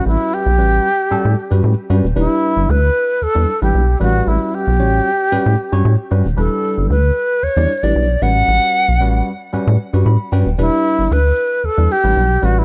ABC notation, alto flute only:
X:1
M:4/4
L:1/16
Q:1/4=114
K:Edor
V:1 name="Alto flute"
E2 G12 z2 | E4 B4 A3 G3 F2 | E2 G12 z2 | A4 B4 c3 d3 f2- |
f6 z8 z2 | E4 B4 A2 G4 F E |]